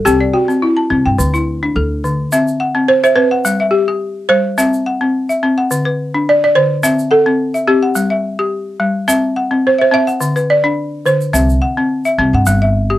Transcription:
0.05 C2 C4 G4 G5, shaker
0.21 D5
0.34 F#4 G5
0.48 C4, shaker
0.62 E4
0.77 A5
0.90 C2 C4
1.06 G2 G5
1.18 D2 D3, shaker
1.34 E4, shaker
1.63 D4
1.76 D2 A4
2.04 D3, shaker
2.32 C4 E5, shaker
2.48 shaker
2.60 F#5
2.75 C4
2.88 C5
3.04 C5 E5, shaker
3.16 C4 B4
3.31 F#5
3.45 G3, shaker
3.60 E5
3.71 G4
3.88 G4
4.29 G3 C5
4.58 C4 E5, shaker
4.73 shaker
4.86 F#5
5.01 C4
5.29 E5, shaker
5.43 C4
5.58 F#5
5.71 D3, shaker
5.85 B4
6.14 D4
6.29 D5
6.44 D5
6.55 D3 C5
6.83 C4 E5, shaker
6.99 shaker
7.11 A4 F#5
7.26 C4
7.54 E5, shaker
7.67 C4 G4
7.83 F#5
7.95 G3, shaker
8.10 E5
8.39 G4
8.80 G3
9.08 C4 E5, shaker
9.36 F#5
9.51 C4
9.67 C5
9.78 C5 E5
9.91 C4 E5
10.07 F#5, shaker
10.20 D3, shaker
10.36 B4, shaker
10.50 D5
10.64 D4
11.06 D3 C5, shaker
11.21 shaker
11.33 C2 C4 E5, shaker
11.49 shaker
11.62 F#5
11.77 C4
12.05 E5, shaker
12.18 C2 C4
12.33 G2 F#5
12.46 G1 G3, shaker
12.62 E5
12.90 G4

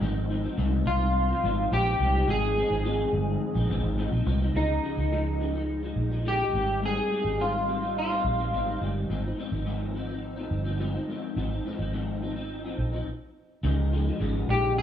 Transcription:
0.01 G#1 G#2 F3 C4 D#4
0.29 G#2 F3 C4 D#4
0.43 F3 C4 D#4
0.57 C2 G#2 F3 C4 D#4
0.86 C2 F4
1.28 F3 C4 D#4
1.43 G#1 G#2 F3 C4 D#4
1.71 A#1 G#2 F3 C4 D#4 G4
1.85 F3 C4 D#4
1.99 C2 G#2 F3 C4 D#4
2.12 F3 C4 D#4
2.27 G#1 G#2 F3 C4 D#4 G#4
2.55 G#2 F3 C4 D#4
2.70 G#1 F3 C4 D#4
2.84 G#2 F3 C4 D#4
3.13 G1
3.54 A#1 F3 C4 D#4
3.68 G#1 G#2 F3 C4 D#4
3.83 G#1
3.97 G#2 F3 C4 D#4
4.11 A#1 F3 C4 D#4
4.25 C2 G#2 F3 C4 D#4
4.40 F3 C4 D#4
4.54 C#2 C#3 F3 G#3 D#4
4.83 C#3 F3 G#3 D#4
4.97 C#2 F3 G#3 D#4
5.11 C#3 F3 G#3 D#4
5.40 C#3 F3 G#3 D#4
5.54 F3 G#3 D#4
5.82 F3 G#3 D#4
5.96 A#1
6.11 F3 G#3 D#4
6.25 C#3 F3 G#3 D#4 G4
6.38 F3 G#3 D#4
6.53 G#1 G#2 G3 C4 D#4
6.81 G#2 G3 C4 D#4
6.86 G#4
6.95 G3 C4 D#4
7.10 G#2 G3 C4 D#4
7.24 G#1 G3 C4 D#4
7.39 G#2 G3 C4 D#4 F4
7.67 G#2 G3 C4 D#4
7.81 G3 C4 D#4
7.98 F4
8.10 G3 C4 D#4
8.24 A#1
8.38 G3 C4 D#4
8.53 G#1 G#2 G3 C4 D#4
8.67 G3 C4 D#4
8.81 G1 G#2 G3 C4 D#4
9.09 G#1 G#2 F3 C4 D#4
9.24 F3 C4 D#4
9.37 G#2 F3 C4 D#4
9.52 G#1 F3 C4 D#4
9.65 G#2 F3 C4 D#4
9.94 G#2 F3 C4 D#4
10.08 F3 C4 D#4
10.36 F3 C4 D#4
10.51 G1
10.64 F3 C4 D#4
10.79 G#2 F3 C4 D#4
10.94 F3 C4 D#4
11.07 G#2 F3 C4 D#4
11.36 G#1 G#2 F3 C4 D#4
11.50 F3 C4 D#4
11.64 G#2 F3 C4 D#4
11.78 G#1 F3 C4 D#4
11.93 G#2 F3 C4 D#4
12.22 G#2 F3 C4 D#4
12.35 F3 C4 D#4
12.63 F3 C4 D#4
12.78 A#1
12.92 F3 C4 D#4
13.63 C#2 C#3 F3 G#3 D#4
13.92 C#3 F3 G#3 D#4
14.06 F3 G#3 D#4
14.20 G#1 C#3 F3 G#3 D#4
14.48 A#1 G4
14.78 G#4

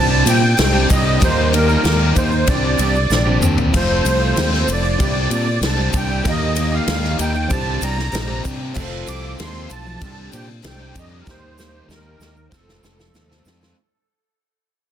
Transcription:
Already playing: C2 C3 G3 C4 D4 G4 C5 A5
0.00 G4
0.10 C4 D4 G4
0.25 A#2 G3 C4 D4 G4 G5, ride, shaker
0.42 muted overdriven electric guitar stroke
0.57 C2 C3 G3 C4 D4 G4 G5, snare, ride, shaker
0.73 C3 G3 C4 D4 G4
0.89 C2 G3 C4 D4 G4 D#5, kick, ride, shaker
1.05 C4 D4 G4
1.20 D#2 D#3 G3 A#3 D#4 G4, kick, ride, shaker
1.24 A#4 C5
1.53 D#3 A#3 D#4 G4 A#4, ride
1.68 A#3 D#4 G4, shaker
1.84 D#2 D#3 G3 A#3 D#4 G4, snare, ride, shaker
2.15 D#2 G3 A#3 D#4 G4 C5, kick, ride, shaker
2.31 muted overdriven electric guitar stroke, shaker
2.46 C2 C3 G3 C4 D4 G4 C5 D5, kick, ride, shaker
2.50 G4
2.63 C4 D4 G4
2.78 C2 G3 C4 D4 G4, ride, shaker
2.95 muted overdriven electric guitar stroke, shaker
3.10 A#1 C3 G3 C4 D4 G4, snare, shaker
3.26 C3 G3 C4 D4 G4
3.40 D#2 G3 C4 D4 G4, mid tom, shaker
3.57 C4 D4 G4, floor tom, shaker
3.71 F1 F2 C3 F3 C4 F4 A4, kick, ride, crash, shaker
3.75 A3 A4 C5
4.05 C2 F2 C3 F3 A3 C4 A4, ride, shaker
4.20 C4 F4 A4
4.36 D#2 F3 C4 F4 A4, snare, ride, shaker
4.54 snare
4.67 F1 F3 A3 C4 F4 A4, ride, shaker
4.72 D5
4.84 muted overdriven electric guitar stroke, shaker
4.97 C2 C3 G3 C4 D4 G4 C5, kick, ride, shaker
5.01 D4 G4
5.15 C4 D4 G4
5.30 A#2 G3 C4 D4 G4, ride, shaker
5.47 muted overdriven electric guitar stroke
5.61 C2 C3 G3 C4 D4 G4, snare, ride, shaker
5.66 A5
5.77 C3 G3 C4 D4 G4
5.93 C2 G3 C4 D4 G4, kick, ride, shaker
5.97 G5
6.09 C4 D4 G4
6.24 D#2 D#3 G3 A#3 D#4 G4 A#4, kick, ride, shaker
6.29 D#5
6.56 D#3 A#3 D#4 G4, ride, shaker
6.71 A#3 D#4 G4 F5
6.87 D#2 D#3 G3 A#3 D#4 G4, snare, ride, shaker
7.04 snare
7.18 D#2 G3 A#3 D#4 G4 G5, ride, shaker
7.35 muted overdriven electric guitar stroke, shaker
7.48 C2 C3 G3 C4 D4 G4 A5, kick, ride, shaker
7.52 D4 G4 C5
7.66 C4 D4 G4
7.81 C2 G3 C4 D4 G4 A#5, ride, shaker
7.98 muted overdriven electric guitar stroke, snare
8.12 A#1 C3 G3 C4 D4 G4, snare, ride, shaker
8.28 C3 G3 C4 D4 G4
8.43 C3 G3 C4 D4 G4, kick, ride, shaker
8.47 G4
8.60 C4 D4 G4
8.74 F1 F2 C3 F3 A3 C4 F4 A4 C5, kick, crash, shaker
8.78 A4
9.06 C2 F2 C3 F3 A3 C4 A4 D6, ride, shaker
9.22 C4 F4 A4
9.38 D#2 F3 C4 F4 A4 C6, snare, ride, shaker
9.68 B1 F3 A3 C4 F4 A4 A5, ride, shaker
9.73 A4
9.86 muted overdriven electric guitar stroke, shaker
9.99 C2 C3 G3 C4 D4 G4, kick, ride, shaker
10.03 D4 G4 C5
10.17 C4 D4 G4
10.32 A#2 G3 C4 D4 G4 G5, ride, shaker
10.49 muted overdriven electric guitar stroke
10.62 C2 C3 G3 C4 D4 G4, snare, ride, shaker
10.67 G5
10.79 C3 G3 C4 D4 G4
10.94 F2 G3 C4 D4 G4, kick, ride, shaker
10.98 G4 D#5
11.11 C4 D4 G4
11.20 A#4
11.24 D#2 D#3 G3 A#3 D#4 G4, kick, snare, shaker
11.28 D#4 G4 A#4 C5
11.58 D#3 A#3 D#4 G4, snare, shaker
11.73 A#3 D#4 G4
11.89 D#2 D#3 G3 A#3 D#4 G4 A#4, snare, shaker
12.19 D#2 G3 A#3 D#4 G4, snare, shaker
12.37 muted overdriven electric guitar stroke, shaker
12.49 F3 A3 C4 F4 A4, kick, snare, shaker
12.53 F4 A4 C5
12.67 C4 F4 A4, snare
12.83 F1 F3 A3 C4 F4 A4, snare, shaker
12.99 muted overdriven electric guitar stroke, snare, shaker
13.14 D#2 F2 C3 F3 A3 C4 A4, snare, shaker
13.30 F3 C4 F4 A4, snare
13.45 F2 F3 A3 C4 F4 A4, snare, shaker
13.49 F3
13.61 C4 F4 A4, snare, shaker

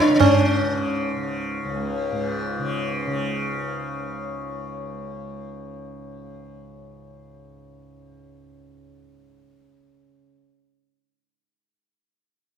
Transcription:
Already playing: C#2 G#2 C#3
0.00 D4, tabla ke
0.09 C#3, tabla te
0.14 D4
0.19 G#2 C#4, tabla na, tabla ge
0.68 C#3
1.17 C#3
1.65 C#2
2.12 G#2
2.59 C#3
3.07 C#3

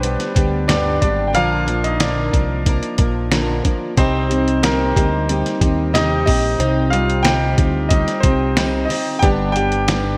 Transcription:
Already playing: B1 G3 B3 D4 B4 C5 D5
0.02 G3 B3 D4 G4, closed hi-hat
0.20 snare, closed hi-hat
0.35 D2 G3 B3 D4 G4, kick, closed hi-hat
0.68 G2 D3 G3 B3 D4 G4 D5, snare, closed hi-hat
1.01 G#1 G3 B3 D4 G4 D5, kick, closed hi-hat
1.28 G5
1.33 A#1 A#2 D3 F3 A#3 D4 F4 A#4 F5, closed hi-hat
1.66 F3 A#3 D4 A#4, closed hi-hat
1.84 D#4 D#5, closed hi-hat
2.00 A#2 D3 F3 A#3 D4 A#4 D5, snare, closed hi-hat
2.33 C2 F3 A#3 D4 A#4, kick, closed hi-hat
2.65 F3 A#3 D4 A#4, kick, closed hi-hat
2.83 closed hi-hat
2.98 A#1 F3 A#3 D4 A#4, kick, closed hi-hat
3.31 A#2 D3 F3 A#3 D4 A#4, snare, closed hi-hat
3.64 F3 A#3 D4 A#4, kick, closed hi-hat
3.97 C2 C3 G3 C4 D#4 G4 C5, kick, closed hi-hat
4.30 C4 D#4 G4, closed hi-hat
4.48 closed hi-hat
4.63 C3 G3 A#3 C4 D#4 G4 A#4, snare, closed hi-hat
4.95 D2 G3 C4 D#4 G4 C5, kick, closed hi-hat
5.28 G3 C4 D#4 G4, closed hi-hat
5.46 snare, closed hi-hat
5.61 D#2 C4 D#4 G4, kick, closed hi-hat
5.93 C3 G3 C4 D#4 G4 D#5, snare, closed hi-hat
6.26 A#1 C4 D#4 G4 D#5, kick, open hi-hat
6.58 C2 C3 G3 C4 D#4 G4, closed hi-hat
6.90 G3 C4 D#4 F4 G4 F5, closed hi-hat
6.95 C4
7.10 closed hi-hat
7.23 C3 G3 C4 D#4 G4 G5, snare, closed hi-hat
7.58 D2 C4 D#4 G4, kick, closed hi-hat
7.89 G3 C4 D#4 D#5, kick, closed hi-hat
7.94 G4
8.08 snare, closed hi-hat
8.20 C2 C4 G4 C5, kick, closed hi-hat
8.25 C4 D#4
8.56 C3 G3 C4 D#4 G4, snare, closed hi-hat
8.85 G4 D#5
8.90 C4 D#4, open hi-hat
9.19 G1 G2 D3 G3 B3 D4 G5, kick, closed hi-hat
9.23 D4 G4
9.52 D4 G4 G5, closed hi-hat
9.57 G3 B3 G4
9.72 closed hi-hat
9.87 G2 D3 G3 B3 D4 G4, snare, closed hi-hat

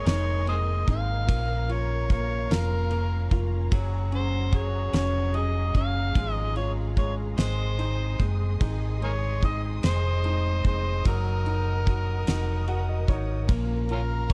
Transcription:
Already playing: G#3 D#4 A#4 D#5 G#5 C6
0.05 F1 G#2 D#3 A#3 D#4 A#4 C#5, snare, ride
0.46 G#3 A#3 C4 D#4 G#4 A#4 C5 D#5, ride
0.87 G#1 A#3 C4 D#4 A#4, kick, ride
0.91 F5
1.27 A#1 A#2 F3 A#3 C#4 F4 A#4 F5 A#5, kick, ride
1.67 A#3 C#4 F4 A#4, ride
1.72 C#5
2.09 A#3 C#4 F4 A#4 C#5, kick, ride
2.50 F1 A#2 F3 A#3 C#4 F4 A#4, snare, ride
2.90 A#3 C#4 F4 A#4, ride
3.31 F1 A#3 C#4 F4 A#4, kick, ride
3.72 F#1 F#3 C#4 F#4 G#4, kick, ride
4.12 C#4 F#4 G#4 C5, ride
4.52 F#3 C#4 F#4 G#4 C#5, kick, ride
4.93 F1 F#3 C#4 F#4 G#4 C#5, snare, ride
5.34 F#3 C#4 F#4 G#4 D#5, ride
5.74 F#1 C#4 F#4 G#4 F5, kick, ride
6.15 G#1 G#2 F3 G#3 C#4 F4 G#4 F5, kick, ride
6.32 D#5
6.55 G#3 C#4 F4 G#4 C#5, ride
6.96 G#3 C#4 F4 G#4 C#5, kick, ride
7.37 G#1 G#2 D#3 G#3 C4 D#4 G#4 C5 D#5 C6 D#6, snare, ride
7.77 G#3 C4 D#4 C5, ride
8.19 F#1 G#3 C4 D#4 C5, kick, ride
8.60 G#1 G#2 D#3 G#3 C4 D#4 C5, kick, ride
9.02 G#3 D#4 G#4 A#4 C#5, ride
9.42 G#3 C4 D#4 C5 D#5, kick, ride
9.83 F1 G#2 D#3 G#3 C4 D#4 C5, snare, ride
10.24 G#3 C4 D#4 C5, ride
10.64 F1 G#3 C4 D#4 C5, kick, ride
11.04 F#1 F#3 D#4 F#4 A#4 F#5, kick, ride
11.45 D#4 F#4 A#4, ride
11.86 F#3 D#4 F#4 A#4, kick, ride
12.27 F1 F#3 D#4 F#4 A#4, snare, ride
12.67 F#3 D#4 F#4 A#4 F#5, ride
12.89 D#5
13.07 G#1 D#4 F#4 A#4 C#5, kick, ride
13.47 A#1 A#2 F3 A#3 C#4 F4 A#4 F5 A#5, kick, ride
13.89 A#3 C#4 F4 A#4, ride
14.29 A#3 C#4, kick

